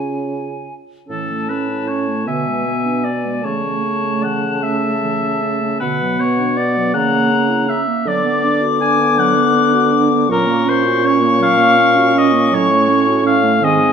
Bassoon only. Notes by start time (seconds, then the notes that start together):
Already playing: C#3
1.10 A2
2.27 B2
3.45 C#3
5.82 B2
6.95 C#3
8.06 D3
10.30 A#2
12.54 A2
13.64 G#2